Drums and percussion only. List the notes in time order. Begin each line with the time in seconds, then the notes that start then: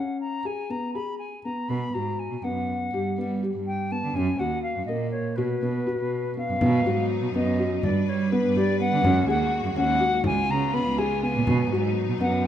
6.61 frame drum
6.85 frame drum
7.35 frame drum
7.83 frame drum
8.08 frame drum
8.56 frame drum
9.04 frame drum
9.28 frame drum
9.76 frame drum
10.24 frame drum
10.98 frame drum
11.23 frame drum
11.47 frame drum
11.72 frame drum
12.21 frame drum